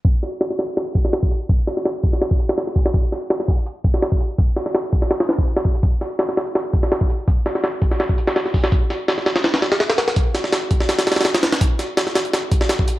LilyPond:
\new DrumStaff \with { instrumentName = "Drums" } \drummode { \time 4/4 \tempo 4 = 166 <hh bd>8 <hh sn>8 <hh sn>16 sn16 <hh sn>16 hh16 <hh sn>8 <hh bd>16 sn16 <hh sn>16 bd16 hh8 | <hh bd>8 <hh sn>16 sn16 <hh sn>8 <hh bd>16 sn16 <hh sn>16 bd16 hh16 <hh sn>16 <hh sn>16 sn16 <hho bd>16 <hh sn>16 | <hh bd>8 <hh sn>8 <hh sn>16 sn16 <hho bd>16 hh16 hh8 <hh bd>16 sn16 <hh sn>16 bd16 hh8 | <hh bd>8 <hh sn>16 sn16 <hh sn>8 <hh bd>16 sn16 <hh sn>16 <hh sn>16 <hh sn>16 bd16 hh16 <hh sn>16 bd16 hh16 |
<hh bd>8 <hh sn>8 <hh sn>16 sn16 <hh sn>16 hh16 <hh sn>8 <hh bd>16 sn16 <hh sn>16 bd16 hh8 | <hh bd>8 <hh sn>16 sn16 <hh sn>8 <hh bd>16 sn16 <hh sn>16 bd16 hh16 <hh sn>16 <hh sn>16 sn16 <hho bd>16 <hh sn>16 | <hh bd>8 <hh sn>8 <hh sn>16 sn16 <hh sn>16 <hh sn>16 <hh sn>16 <hh sn>16 <hh sn>16 <hh sn>16 <hh sn>16 <hh sn>16 <hh sn>16 <hh sn>16 | <hh bd>8 <hh sn>16 sn16 <hh sn>8 <hh bd>16 sn16 <hh sn>16 <hh sn>16 <hh sn>32 <hh sn>32 <hh sn>32 <hh sn>32 <hh sn>16 <hh sn>16 <hh sn>16 <hh sn>16 |
<hh bd>8 <hh sn>8 <hh sn>16 sn16 <hh sn>16 hh16 <hh sn>8 <hh bd>16 sn16 <hh sn>16 bd16 hh8 | }